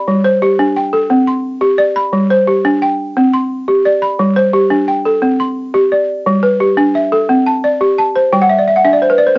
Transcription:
0.00 0.25 D5 medium
0.00 0.25 B5 medium
0.08 0.42 G3 medium
0.24 0.76 C5 medium
0.42 0.94 G4 medium
0.59 0.93 D4 medium
0.76 1.28 G5 medium
0.93 1.27 A4 medium
1.10 1.45 C4 medium
1.27 1.79 C6 medium
1.61 1.96 G4 medium
1.78 2.30 D5 medium
1.96 2.30 B5 medium
2.13 2.47 G3 medium
2.31 2.82 C5 medium
2.48 2.99 G4 medium
2.65 2.99 D4 medium
2.82 3.33 G5 medium
3.17 3.51 C4 medium
3.34 3.85 C6 medium
3.68 4.02 G4 medium
3.85 4.37 D5 medium
4.02 4.36 B5 medium
4.19 4.54 G3 medium
4.36 4.88 C5 medium
4.53 5.05 G4 medium
4.70 5.05 D4 medium
4.88 5.40 G5 medium
5.05 5.40 A4 medium
5.22 5.57 C4 medium
5.40 5.91 C6 medium
5.74 6.08 G4 medium
5.92 6.43 D5 medium
6.26 6.60 G3 medium
6.43 6.94 B4 medium
6.60 7.12 G4 medium
6.77 7.12 D4 medium
6.95 7.46 E5 medium
7.12 7.46 A4 medium
7.29 7.63 C4 medium
7.46 7.97 A5 medium
7.64 8.15 D5 medium
7.81 8.15 G4 medium
7.98 8.50 A5 medium
8.16 8.50 C5 medium
8.32 8.67 G3 medium
8.32 8.48 G5 medium
8.42 8.57 F#5 medium
8.49 8.65 E5 medium
8.59 8.74 D5 medium
8.68 8.83 E5 medium
8.76 8.92 F#5 medium
8.85 9.19 D4 medium
8.85 9.00 E5 medium
8.93 9.09 D5 medium
9.02 9.18 C5 medium
9.10 9.26 B4 medium
9.18 9.34 D5 medium
9.27 9.38 C5 medium

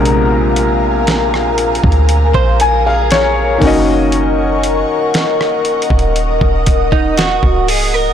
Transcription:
0.00 1.80 A#1 loud
0.00 3.56 A#2 medium
0.00 3.58 C3 medium
0.00 3.57 G#3 medium
0.00 3.59 D4 medium
0.00 3.58 A#4 medium
0.00 3.60 A#4 medium
0.00 3.58 F5 medium
0.00 3.58 G#5 medium
0.00 3.58 A#5 medium
0.05 closed hi-hat medium
0.56 closed hi-hat medium
1.07 snare loud
1.07 closed hi-hat medium
1.34 cross-stick medium
1.58 closed hi-hat medium
1.75 closed hi-hat soft
1.84 2.33 D2 loud
1.84 kick loud
1.92 closed hi-hat soft
2.09 closed hi-hat medium
2.34 3.58 A#1 medium
2.34 2.60 C5 medium
2.34 kick loud
2.60 2.85 A#4 medium
2.60 2.84 G#5 medium
2.60 closed hi-hat medium
2.85 3.58 G#4 medium
2.85 3.10 F5 medium
3.11 4.09 C#5 medium
3.11 snare loud
3.11 closed hi-hat medium
3.58 4.85 F#1 loud
3.58 7.63 D#3 medium
3.58 7.64 A#3 medium
3.58 8.13 A#4 medium
3.58 8.13 D#5 medium
3.58 8.13 F#5 medium
3.58 5.63 C#6 medium
3.58 kick loud
3.58 open hi-hat medium
3.63 7.65 C#4 medium
3.63 7.66 F#4 medium
3.67 7.67 D#5 medium
4.12 closed hi-hat medium
4.64 closed hi-hat medium
5.14 snare loud
5.14 closed hi-hat medium
5.41 cross-stick medium
5.65 8.13 D#6 medium
5.65 closed hi-hat medium
5.82 closed hi-hat soft
5.90 6.39 D#1 loud
5.90 kick loud
5.99 closed hi-hat soft
6.16 closed hi-hat medium
6.41 7.39 D#1 medium
6.41 kick loud
6.66 kick loud
6.66 closed hi-hat medium
6.92 7.16 D#4 medium
6.92 kick loud
7.17 7.69 F#4 medium
7.17 snare loud
7.17 closed hi-hat medium
7.43 8.13 C#1 loud
7.43 kick medium
7.68 7.94 G#4 medium
7.68 open hi-hat medium
7.94 8.13 A#4 medium

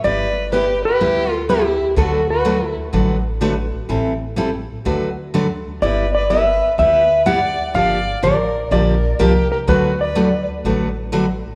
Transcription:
0.04 0.81 G1 medium
0.04 0.27 G3 soft
0.04 0.27 B3 medium
0.04 0.27 E4 medium
0.04 0.27 G4 medium
0.04 0.49 B4 medium
0.04 0.54 D5 loud
0.52 0.64 G3 medium
0.52 0.65 B3 medium
0.52 0.65 E4 medium
0.52 0.83 G4 medium
0.52 0.65 G4 medium
0.52 0.84 B4 medium
0.85 1.29 G4 medium
0.85 1.34 B4 medium
1.01 1.78 D2 medium
1.01 1.23 G3 medium
1.01 1.23 B3 medium
1.01 1.24 E4 medium
1.01 1.24 G4 medium
1.29 1.45 F4 medium
1.34 1.51 A4 medium
1.49 1.61 G3 medium
1.49 1.61 B3 medium
1.49 1.61 E4 medium
1.49 1.94 E4 medium
1.49 1.94 G4 medium
1.49 1.61 G4 medium
1.96 2.74 D2 medium
1.96 2.19 D3 medium
1.96 2.20 F#3 medium
1.96 2.20 A3 medium
1.96 2.20 D4 medium
1.96 2.20 F#4 medium
1.96 2.27 F#4 medium
1.96 2.27 A4 medium
1.96 2.20 B4 medium
2.30 2.74 F#4 medium
2.30 2.75 B4 medium
2.45 2.57 D3 medium
2.45 2.57 F#3 medium
2.45 2.57 A3 medium
2.45 2.57 D4 medium
2.45 2.57 F#4 medium
2.45 2.57 B4 medium
2.93 3.70 A1 medium
2.93 3.15 D3 medium
2.93 3.16 F#3 medium
2.93 3.16 A3 medium
2.93 3.16 D4 medium
2.93 3.16 F#4 medium
2.93 3.16 B4 medium
3.41 3.53 D3 medium
3.41 3.53 F#3 medium
3.41 3.53 A3 medium
3.41 3.53 D4 medium
3.41 3.54 F#4 medium
3.41 3.54 B4 medium
3.89 4.66 A1 medium
3.89 4.12 E3 medium
3.89 4.12 G3 medium
3.89 4.12 C4 medium
3.89 4.12 E4 medium
3.89 4.12 A4 medium
4.36 4.49 E3 medium
4.36 4.49 G3 medium
4.36 4.49 C4 medium
4.36 4.50 E4 medium
4.36 4.50 A4 medium
4.85 5.63 D2 medium
4.85 5.08 D3 medium
4.85 5.08 F#3 medium
4.85 5.08 A3 medium
4.85 5.08 D4 medium
4.85 5.08 F#4 medium
4.85 5.09 B4 medium
5.34 5.46 D3 medium
5.34 5.46 F#3 medium
5.34 5.46 A3 medium
5.34 5.46 D4 medium
5.34 5.46 F#4 medium
5.34 5.46 B4 medium
5.82 6.59 G1 medium
5.82 6.05 G3 medium
5.82 6.05 B3 medium
5.82 6.05 E4 medium
5.82 6.05 G4 medium
5.82 6.13 B4 medium
5.82 6.13 D5 loud
6.15 6.30 B4 medium
6.15 6.31 D5 loud
6.30 6.42 G3 medium
6.30 6.42 B3 medium
6.30 6.42 E4 medium
6.30 6.43 G4 medium
6.30 6.75 B4 medium
6.30 6.78 E5 medium
6.78 7.56 D2 medium
6.78 7.01 G3 medium
6.78 7.01 B3 medium
6.78 7.01 E4 medium
6.78 7.01 G4 medium
6.78 7.24 B4 medium
6.78 7.24 E5 loud
7.26 7.38 G3 medium
7.26 7.38 B3 medium
7.26 7.39 E4 medium
7.26 7.39 G4 medium
7.26 7.72 D5 medium
7.26 7.75 F#5 loud
7.74 8.13 G1 medium
7.74 7.97 D3 medium
7.74 7.97 F3 medium
7.74 7.98 A#3 medium
7.74 7.98 D4 medium
7.74 7.98 G4 medium
7.74 8.21 D5 medium
7.74 8.25 F5 loud
8.23 8.64 A1 medium
8.23 8.35 D3 medium
8.23 8.35 F3 medium
8.23 8.35 A#3 medium
8.23 8.35 D4 medium
8.23 8.35 G4 medium
8.23 8.69 A#4 medium
8.23 8.71 D5 medium
8.71 9.12 A#1 medium
8.71 8.94 D3 soft
8.71 8.94 F3 medium
8.71 8.94 A#3 medium
8.71 8.94 D4 medium
8.71 8.94 G4 medium
8.71 9.17 A#4 medium
8.71 9.21 D5 loud
9.19 9.61 C2 medium
9.19 9.31 D3 medium
9.19 9.32 F3 medium
9.19 9.32 A#3 medium
9.19 9.32 D4 medium
9.19 9.50 G4 medium
9.19 9.32 G4 medium
9.19 9.50 A#4 medium
9.52 9.59 G4 medium
9.52 9.57 A#4 medium
9.67 10.45 D2 medium
9.67 9.90 D3 medium
9.67 9.90 F#3 medium
9.67 9.91 A3 medium
9.67 9.91 D4 medium
9.67 9.98 F#4 medium
9.67 9.91 F#4 medium
9.67 9.91 B4 medium
9.67 9.98 B4 loud
10.00 10.45 B4 medium
10.00 10.45 D5 medium
10.15 10.28 D3 medium
10.15 10.28 F#3 medium
10.15 10.28 A3 medium
10.15 10.28 D4 medium
10.15 10.28 F#4 medium
10.15 10.28 B4 medium
10.64 11.42 A1 medium
10.64 10.87 D3 medium
10.64 10.88 F#3 medium
10.64 10.88 A3 medium
10.64 10.88 D4 medium
10.64 10.88 F#4 medium
10.64 10.88 B4 medium
11.12 11.24 D3 medium
11.12 11.25 F#3 medium
11.12 11.25 A3 medium
11.12 11.25 D4 medium
11.12 11.25 F#4 medium
11.12 11.25 B4 medium

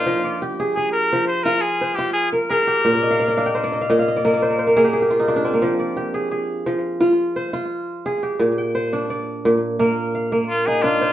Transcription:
0.00 0.11 A#2 medium
0.00 1.13 A#3 medium
0.00 1.39 D4 medium
0.00 0.30 D#4 medium
0.00 0.41 F4 medium
0.00 1.08 C5 medium
0.06 1.11 F3 medium
0.24 1.35 D5 medium
0.42 1.83 G4 medium
0.60 0.77 G#4 medium
0.75 0.91 G#4 medium
0.75 2.14 G#4 medium
0.92 1.25 A#4 medium
1.13 2.89 F3 medium
1.27 1.45 C5 medium
1.43 1.98 F4 medium
1.43 1.63 A#4 medium
1.61 1.97 G#4 medium
1.81 3.00 C5 medium
1.95 3.50 F4 medium
1.95 2.12 G4 medium
2.13 2.29 G#4 medium
2.33 3.60 A#4 medium
2.50 3.52 G#4 medium
2.50 3.85 A#4 medium
2.67 4.08 G4 medium
2.85 3.88 A#2 medium
2.93 3.19 D5 medium
3.02 3.26 D#5 medium
3.10 3.37 F5 medium
3.20 3.63 D5 medium
3.28 3.70 D#5 medium
3.37 3.78 D4 medium
3.37 3.81 F5 medium
3.46 4.39 G5 medium
3.55 4.42 C5 medium
3.64 3.96 D5 medium
3.72 3.90 D#5 medium
3.81 3.98 F5 medium
3.90 5.68 A#2 medium
3.90 4.08 D#5 medium
3.99 4.99 F5 medium
4.08 4.24 D#5 medium
4.16 4.33 D5 medium
4.25 4.76 A#3 medium
4.25 5.34 D#5 medium
4.34 5.26 D5 medium
4.42 4.58 C5 medium
4.50 4.67 A#4 medium
4.59 5.77 C5 medium
4.67 5.94 A#4 medium
4.76 5.53 A#3 medium
4.76 4.93 G#4 medium
4.84 5.02 G4 medium
4.93 6.03 G#4 medium
5.02 5.96 G4 medium
5.10 5.28 F4 medium
5.20 5.42 D#4 medium
5.28 5.36 D4 medium
5.28 6.79 F4 medium
5.36 7.04 D4 medium
5.45 7.25 C4 medium
5.53 7.46 A#3 medium
5.62 6.65 F3 medium
5.80 6.90 D5 medium
5.97 7.38 G4 medium
6.14 6.31 G#4 medium
6.31 7.68 G#4 medium
6.66 8.46 F3 medium
7.01 7.53 F4 medium
7.36 8.55 C5 medium
7.53 9.05 F4 medium
8.06 8.64 G#4 medium
8.23 9.64 G4 medium
8.39 9.44 A#2 medium
8.58 9.51 G5 medium
8.75 9.93 C5 medium
8.93 10.61 D4 medium
9.10 10.21 D5 medium
9.45 11.13 A#2 medium
9.79 10.32 A#3 medium
9.79 11.07 A#4 medium
10.15 11.13 F5 medium
10.32 11.13 A#3 medium
10.49 10.68 F4 medium
10.66 11.13 D#4 medium
10.66 10.84 G#4 medium
10.82 11.13 D4 medium
10.82 11.13 F4 loud
11.01 11.13 C5 medium

